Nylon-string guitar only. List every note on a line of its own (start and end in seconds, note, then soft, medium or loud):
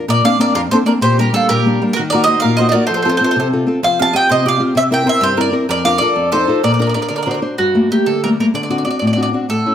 0.08 0.24 A#2 medium
0.24 0.38 A#3 soft
0.24 0.38 C4 soft
0.24 0.38 D4 soft
0.39 0.54 A#3 soft
0.39 0.65 C4 soft
0.39 0.65 D4 medium
0.55 0.71 F2 medium
0.71 0.84 A#3 soft
0.71 0.85 C4 soft
0.71 0.85 D4 medium
0.85 0.98 A#3 medium
0.85 0.98 C4 soft
0.85 0.98 D4 medium
1.01 1.32 A#2 medium
1.18 1.32 G3 soft
1.18 1.32 A#3 soft
1.18 1.32 D4 medium
1.33 1.58 G3 soft
1.33 1.59 A#3 soft
1.33 1.59 D4 medium
1.50 1.80 A#2 medium
1.66 1.81 G3 medium
1.66 1.81 A#3 medium
1.66 1.81 D4 medium
1.82 1.93 G3 medium
1.82 1.93 A#3 soft
1.82 1.93 D4 medium
1.99 2.27 D#3 medium
2.14 2.26 A#3 medium
2.14 2.26 D#4 soft
2.14 2.27 F#4 medium
2.27 2.52 A#3 soft
2.27 2.52 D#4 soft
2.27 2.52 F#4 soft
2.44 2.73 A#2 medium
2.59 2.73 A#3 medium
2.59 2.73 D#4 soft
2.59 2.73 F#4 medium
2.74 2.86 A#3 medium
2.74 2.86 D#4 soft
2.74 2.86 F#4 medium
2.90 3.20 F3 medium
3.05 3.20 C4 soft
3.05 3.19 F4 soft
3.05 3.21 A4 medium
3.21 3.46 C4 soft
3.21 3.46 F4 soft
3.21 3.47 A4 soft
3.36 3.67 C3 medium
3.53 3.65 C4 soft
3.53 3.66 F4 soft
3.53 3.67 A4 medium
3.67 3.79 C4 soft
3.67 3.79 F4 soft
3.67 3.80 A4 medium
3.83 4.13 F3 medium
4.00 4.13 C4 soft
4.00 4.13 F4 soft
4.00 4.13 G4 soft
4.14 4.39 C4 soft
4.14 4.40 G4 soft
4.31 4.61 C3 medium
4.45 4.58 C4 soft
4.45 4.59 F4 soft
4.45 4.59 G4 medium
4.59 4.72 C4 medium
4.59 4.73 F4 soft
4.59 4.73 G4 medium
4.75 5.06 C3 medium
4.91 5.05 C4 medium
4.91 5.04 E4 soft
4.91 5.04 A#4 medium
5.05 5.32 C4 soft
5.05 5.32 E4 soft
5.05 5.32 A#4 soft
5.21 5.53 G2 medium
5.37 5.51 C4 medium
5.37 5.51 E4 soft
5.37 5.52 A#4 medium
5.52 5.65 C4 medium
5.52 5.65 E4 soft
5.52 5.66 A#4 medium
5.69 6.00 F2 medium
5.85 6.00 D4 soft
5.85 6.00 F4 soft
5.85 6.00 A#4 medium
6.01 6.13 D4 soft
6.01 6.13 F4 soft
6.01 6.14 A#4 soft
6.16 6.47 F2 medium
6.33 6.46 D#4 medium
6.33 6.47 F4 medium
6.33 6.48 A4 medium
6.48 6.60 D#4 medium
6.48 6.60 F4 soft
6.48 6.61 A4 medium
6.64 6.95 A#2 medium
6.79 6.95 D4 soft
6.79 6.95 F4 soft
6.79 6.95 A#4 soft
6.96 7.08 D4 soft
6.96 7.09 F4 soft
6.96 7.09 A#4 soft
7.10 7.42 D3 medium
7.27 7.41 D4 soft
7.27 7.41 F#4 soft
7.27 7.41 C5 medium
7.42 7.55 D4 soft
7.42 7.55 F#4 soft
7.42 7.55 C5 medium
7.59 7.90 G2 medium
7.75 7.89 G3 soft
7.75 7.89 A3 soft
7.75 7.90 A#3 medium
7.90 8.16 G3 soft
7.90 8.17 A3 soft
7.90 8.17 A#3 soft
8.07 8.38 D3 medium
8.24 8.38 G3 soft
8.24 8.39 A3 soft
8.24 8.39 A#3 soft
8.40 8.51 G3 soft
8.40 8.52 A3 soft
8.40 8.52 A#3 soft
8.54 8.85 D3 medium
8.69 8.85 C4 soft
8.69 8.85 D4 soft
8.69 8.86 F#4 soft
8.86 9.11 C4 soft
8.86 9.12 D4 soft
8.86 9.12 F#4 soft
9.02 9.32 A2 medium
9.16 9.32 C4 soft
9.16 9.33 D4 soft
9.16 9.33 F#4 medium
9.33 9.45 C4 soft
9.33 9.46 D4 soft
9.33 9.46 F#4 soft
9.49 9.75 A2 medium
9.66 9.75 A3 soft
9.66 9.75 C#4 soft
9.66 9.75 E4 soft